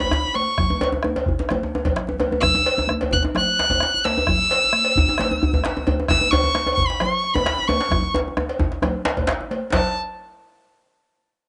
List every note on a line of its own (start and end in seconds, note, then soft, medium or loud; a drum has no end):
0.00 0.36 B5 medium
0.00 cowbell medium
0.00 djembe tone medium
0.00 high conga medium
0.00 djembe bass medium
0.11 bombo rim loud
0.11 djembe slap medium
0.11 high conga soft
0.11 djembe bass medium
0.25 djembe tone medium
0.34 0.81 C#6 medium
0.34 cowbell soft
0.34 high conga medium
0.48 djembe slap soft
0.48 high conga soft
0.58 bombo rim loud
0.58 bombo low loud
0.58 djembe slap soft
0.58 low conga medium
0.58 djembe bass medium
0.70 high conga medium
0.70 djembe tone medium
0.80 bombo rim soft
0.80 cowbell medium
0.80 djembe slap medium
0.80 djembe tone medium
0.92 djembe tone medium
0.92 high conga soft
1.02 bombo rim loud
1.02 djembe slap soft
1.02 high conga medium
1.02 djembe tone medium
1.16 cowbell medium
1.16 djembe tone medium
1.16 high conga soft
1.26 bombo rim soft
1.26 bombo low loud
1.26 djembe bass medium
1.39 djembe slap medium
1.39 djembe tone medium
1.49 bombo rim loud
1.49 cowbell medium
1.49 djembe slap soft
1.49 high conga medium
1.49 djembe tone medium
1.49 low conga medium
1.63 djembe tone medium
1.73 djembe slap soft
1.73 djembe tone medium
1.84 bombo low medium
1.84 cowbell soft
1.84 djembe tone medium
1.84 low conga soft
1.84 djembe bass medium
1.96 bombo rim loud
1.96 djembe slap medium
1.96 low conga soft
2.07 bombo rim soft
2.07 djembe tone medium
2.07 low conga medium
2.09 djembe tone medium
2.19 cowbell medium
2.19 djembe slap soft
2.19 high conga medium
2.19 djembe tone medium
2.31 bombo rim soft
2.31 high conga medium
2.31 djembe tone medium
2.41 2.85 E6 loud
2.41 bombo rim loud
2.41 bombo low loud
2.41 djembe tone medium
2.41 djembe bass medium
2.41 low conga medium
2.54 bombo rim soft
2.54 high conga medium
2.54 djembe tone medium
2.64 bombo rim soft
2.64 cowbell medium
2.64 high conga soft
2.77 bombo rim soft
2.77 djembe tone medium
2.87 bombo rim loud
2.87 djembe slap soft
2.87 high conga medium
2.87 djembe tone medium
3.01 cowbell medium
3.01 djembe slap soft
3.01 djembe tone medium
3.11 3.23 F#6 loud
3.11 bombo low loud
3.11 djembe slap soft
3.11 djembe tone medium
3.11 djembe bass medium
3.23 djembe slap medium
3.23 high conga soft
3.23 djembe tone medium
3.35 4.06 F#6 loud
3.35 bombo rim loud
3.35 cowbell medium
3.35 high conga medium
3.35 djembe tone medium
3.35 low conga medium
3.48 bombo rim soft
3.48 djembe slap soft
3.58 bombo rim soft
3.58 djembe slap medium
3.58 high conga soft
3.69 bombo low medium
3.69 cowbell medium
3.69 high conga medium
3.69 djembe tone medium
3.69 djembe bass medium
3.80 bombo rim loud
3.80 djembe slap medium
3.80 high conga soft
3.94 djembe tone medium
4.05 5.87 E6 loud
4.05 cowbell soft
4.05 djembe slap medium
4.05 high conga medium
4.16 high conga soft
4.16 djembe tone medium
4.27 bombo rim loud
4.27 bombo low loud
4.27 low conga medium
4.27 djembe bass medium
4.38 bombo rim soft
4.38 high conga medium
4.50 bombo rim soft
4.50 cowbell medium
4.50 djembe slap medium
4.50 high conga soft
4.62 bombo rim soft
4.62 djembe tone medium
4.73 bombo rim loud
4.73 high conga medium
4.85 cowbell medium
4.85 djembe slap soft
4.96 bombo low loud
4.96 djembe slap soft
4.96 djembe bass medium
4.96 djembe bass loud
5.08 djembe slap medium
5.08 high conga soft
5.08 djembe tone medium
5.18 bombo rim loud
5.18 cowbell medium
5.18 djembe slap medium
5.18 high conga medium
5.18 djembe tone medium
5.18 low conga medium
5.30 bombo rim soft
5.30 djembe slap soft
5.30 djembe tone medium
5.42 bombo rim soft
5.42 high conga soft
5.42 djembe bass loud
5.53 bombo low medium
5.53 high conga medium
5.53 djembe tone medium
5.53 djembe bass medium
5.64 bombo rim loud
5.64 djembe slap medium
5.64 high conga soft
5.77 djembe tone medium
5.87 cowbell medium
5.87 high conga medium
5.87 djembe bass loud
5.99 djembe slap soft
5.99 high conga soft
5.99 djembe tone medium
6.08 6.33 E6 loud
6.08 bombo rim loud
6.08 bombo low loud
6.08 djembe slap medium
6.08 low conga medium
6.08 djembe bass medium
6.21 bombo rim soft
6.21 djembe tone medium
6.21 high conga medium
6.31 6.74 C#6 loud
6.31 bombo rim soft
6.31 cowbell medium
6.31 djembe slap medium
6.31 high conga soft
6.31 djembe bass loud
6.43 bombo rim soft
6.43 djembe tone medium
6.55 bombo rim loud
6.55 djembe slap medium
6.55 djembe slap soft
6.55 high conga medium
6.66 cowbell medium
6.66 djembe tone medium
6.75 6.89 C#6 medium
6.75 bombo low loud
6.75 djembe slap soft
6.75 djembe bass medium
6.87 7.01 B5 medium
6.87 djembe slap medium
6.87 high conga soft
7.00 7.35 C#6 medium
7.00 bombo rim loud
7.00 cowbell medium
7.00 high conga medium
7.00 djembe tone medium
7.00 low conga medium
7.12 bombo rim soft
7.12 djembe slap soft
7.24 bombo rim soft
7.24 high conga soft
7.34 7.69 B5 medium
7.34 bombo low medium
7.34 cowbell soft
7.34 high conga medium
7.34 djembe tone loud
7.34 djembe bass medium
7.46 bombo rim loud
7.46 djembe slap medium
7.46 high conga soft
7.59 djembe tone medium
7.68 8.14 C#6 medium
7.68 cowbell soft
7.68 high conga medium
7.68 djembe tone loud
7.79 djembe slap medium
7.79 djembe slap soft
7.79 high conga soft
7.90 bombo rim loud
7.90 bombo low loud
7.90 high conga soft
7.90 djembe tone loud
7.90 low conga medium
7.90 djembe bass medium
8.02 bombo rim soft
8.02 high conga medium
8.14 bombo rim soft
8.14 djembe slap medium
8.14 djembe tone loud
8.26 bombo rim soft
8.26 djembe slap soft
8.26 high conga soft
8.26 djembe tone medium
8.37 bombo rim loud
8.37 djembe tone loud
8.37 high conga medium
8.49 cowbell medium
8.49 djembe slap soft
8.59 bombo low loud
8.59 djembe tone loud
8.59 djembe bass medium
8.71 bombo rim soft
8.71 djembe slap medium
8.82 bombo rim loud
8.82 cowbell medium
8.82 djembe slap soft
8.82 djembe tone loud
8.82 high conga medium
8.82 djembe tone medium
8.82 low conga medium
8.95 high conga soft
9.05 djembe slap loud
9.17 bombo low medium
9.17 cowbell soft
9.17 high conga medium
9.17 djembe bass medium
9.27 bombo rim loud
9.27 djembe slap loud
9.27 djembe slap medium
9.27 high conga soft
9.40 djembe tone medium
9.51 cowbell soft
9.51 djembe slap soft
9.51 high conga medium
9.62 high conga soft
9.72 9.94 A5 medium
9.72 bombo low medium
9.72 cowbell medium
9.72 djembe slap loud
9.72 low conga medium
9.72 djembe bass medium